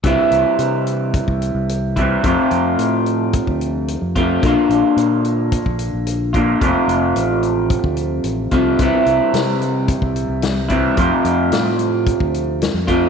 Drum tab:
HH |x-x-x-x-x-x-x-x-|x-x-x-x-x-x-x-x-|x-x-x-x-x-x-x-x-|x-x-x-x-x-x-x-x-|
SD |----------------|----------------|----------------|----------------|
BD |o-------oo----o-|o-------oo----o-|o-------oo----o-|o-------oo----o-|

HH |x-x-x-x-x-x-x-x-|x-x-x-x-x-x-x-x-|
SD |----o-------o---|----o-------o---|
BD |o-------oo----o-|o-------oo----o-|